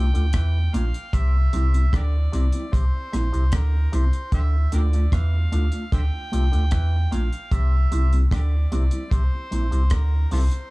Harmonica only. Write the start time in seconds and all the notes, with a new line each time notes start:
Already playing: G5
0.75 F5
1.15 E5
1.95 G4 A#4 D5
2.75 C5
3.54 A#4
3.95 C5
4.34 G4 C5 E5
4.74 G4 A#4 D5
5.14 F5
5.94 C5 E5 G5
7.13 F5
7.53 E5
8.33 G4 A#4 D5
9.12 C5
9.93 A#4
10.33 F4 A4 C5